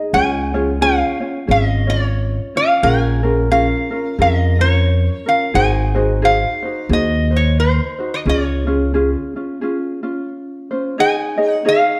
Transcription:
Already playing: ukulele D#4 G#4 D#5
0.13 upright bass C#2, ukulele C#4 F4 G#4 C#5, resonator guitar played with a steel bar G#5
0.54 ukulele C#4 F4 G#4 C#5
0.81 ukulele C#4 F4 G#4 C#5, resonator guitar played with a steel bar F5
1.20 ukulele C#4 F4 C#5
1.47 upright bass G#1, ukulele C#4 F4 G#4 C#5, resonator guitar played with a steel bar D#5
1.87 ukulele C#4 F4 C#5, resonator guitar played with a steel bar C#5
2.55 ukulele C#4 F4 C#5, resonator guitar played with a steel bar F5
2.83 upright bass A#1, ukulele C#4 F4 G#4 A#4, resonator guitar played with a steel bar G#5
3.23 ukulele C#4 F4 G#4 A#4
3.51 ukulele C#4 F4 G#4 A#4, resonator guitar played with a steel bar F5
3.91 ukulele C#4 F4 A#4
4.18 upright bass F2, ukulele C#4 F4 G#4 A#4, resonator guitar played with a steel bar D#5
4.59 ukulele C#4 F4 A#4, resonator guitar played with a steel bar C#5
5.26 ukulele C#4 F4 A#4, resonator guitar played with a steel bar F5
5.54 upright bass G#1, ukulele D#4 F#4 G#4 C5, resonator guitar played with a steel bar G#5
5.95 ukulele D#4 F#4 G#4 C5
6.22 ukulele D#4 F#4 G#4 C5, resonator guitar played with a steel bar F5
6.63 ukulele D#4 F#4 C5
6.89 upright bass D#2, ukulele D#4 F#4 G#4 C5, resonator guitar played with a steel bar D#5
7.31 ukulele D#4 F#4 C5
7.37 resonator guitar played with a steel bar C#5
7.60 resonator guitar played with a steel bar C5
7.99 ukulele D#4 F#4 C5
8.14 resonator guitar played with a steel bar D#5
8.26 upright bass C#2, ukulele C#4 F4 G#4, resonator guitar played with a steel bar C#5
8.67 ukulele C#4 F4 G#4
8.94 ukulele C#4 F4 G#4
9.36 ukulele C#4 F4
9.61 ukulele C#4 F4 G#4
10.03 ukulele C#4 F4
10.71 ukulele C#4 F4 C5
10.98 ukulele D#4 G#4 C#5 D#5, resonator guitar played with a steel bar G#5
11.37 ukulele D#4 G#4 C#5 D#5
11.52 resonator guitar played with a steel bar F#5
11.65 ukulele D#4 G#4 C#5 D#5, resonator guitar played with a steel bar F5

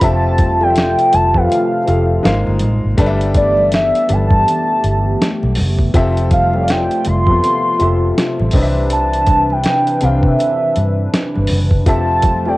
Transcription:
Already playing: analog synth pad C3
0.01 fingered electric bass F1, grand piano F3 C4 G4 A4 E5, analog synth pad F3 A3 F4, soft synth lead A5, kick, closed hi-hat, muted conga
0.38 kick, closed hi-hat, muted conga, high conga
0.61 grand piano F3 C4 G4 A4 D5, soft synth lead G5, high conga
0.70 grand piano E5
0.76 snare, closed hi-hat, muted conga
0.99 closed hi-hat
1.13 fingered electric bass F1, soft synth lead A5, closed hi-hat, muted conga, high conga, low conga
1.34 fingered electric bass F2, grand piano F3 C4 G4 A4 B4, soft synth lead F5, kick
1.50 closed hi-hat, muted conga, low conga
1.86 fingered electric bass F1, grand piano F3 C4 G4 A4 F5, closed hi-hat
2.23 fingered electric bass G#1, grand piano G#3 D#4 A#4 C5 F5, analog synth pad G#3 A#3 F4, snare, closed hi-hat, muted conga
2.47 fingered electric bass G1, high conga
2.59 fingered electric bass A1, closed hi-hat, muted conga, high conga, low conga
2.85 fingered electric bass G#1
2.97 fingered electric bass G1, analog synth pad E3 A3 B3 G4, grand piano G3 D4 A4 B4 D5, kick, closed hi-hat
3.06 grand piano E5
3.21 closed hi-hat
3.35 soft synth lead D5, kick, closed hi-hat, muted conga, high conga
3.57 high conga
3.72 soft synth lead E5, snare, closed hi-hat, muted conga
3.95 closed hi-hat
4.09 fingered electric bass G1, grand piano G3 D4 A4 B4 E5, closed hi-hat, high conga, low conga
4.13 soft synth lead A5
4.31 fingered electric bass G2, kick
4.46 closed hi-hat, low conga
4.84 fingered electric bass G1, closed hi-hat
5.22 snare, closed hi-hat
5.43 fingered electric bass B1, high conga
5.55 fingered electric bass F#1, open hi-hat, muted conga, high conga, low conga
5.79 kick
5.94 fingered electric bass F1, analog synth pad C3 F3 F4, grand piano F3 C4 G4 A4 E5, kick, closed hi-hat
6.17 closed hi-hat
6.31 soft synth lead F5, kick, closed hi-hat, muted conga, high conga
6.53 grand piano F3 C4 G4 A4 C#5, high conga
6.63 grand piano D5
6.68 soft synth lead G5, snare, closed hi-hat
6.91 closed hi-hat
7.05 fingered electric bass F1, soft synth lead C6, closed hi-hat, muted conga, high conga, low conga
7.27 fingered electric bass F2, grand piano F3 B3 C4 G4 A4, kick
7.43 closed hi-hat, muted conga, low conga
7.79 fingered electric bass F1, grand piano F3 C4 G4 A4 E5, closed hi-hat, muted conga
8.18 snare, closed hi-hat
8.39 fingered electric bass A1, high conga
8.51 fingered electric bass C2, grand piano C3 C4 D4, analog synth pad E3 D4 B4, kick, open hi-hat, muted conga, high conga, low conga
8.55 grand piano B4 D#5
8.62 grand piano E5
8.90 soft synth lead A5, closed hi-hat, muted conga
9.13 closed hi-hat
9.27 kick, closed hi-hat, muted conga, high conga
9.50 soft synth lead G5, high conga
9.64 snare, closed hi-hat, muted conga
9.87 closed hi-hat
10.01 fingered electric bass C2, grand piano C3 C4 D4 B4 G5, soft synth lead F5, closed hi-hat, high conga, low conga
10.23 fingered electric bass C3, soft synth lead E5, kick
10.39 closed hi-hat, muted conga, low conga
10.76 fingered electric bass G2, closed hi-hat
11.14 snare, closed hi-hat
11.35 fingered electric bass G1, high conga
11.47 fingered electric bass F#1, open hi-hat, muted conga, high conga, low conga
11.71 kick
11.86 fingered electric bass F1, analog synth pad F3 A3 F4, grand piano F3 C4 G4 A4 E5, soft synth lead A5, kick, closed hi-hat, muted conga
12.23 kick, closed hi-hat, high conga
12.45 grand piano F3 C4 G4 A4 D5, soft synth lead G5, high conga

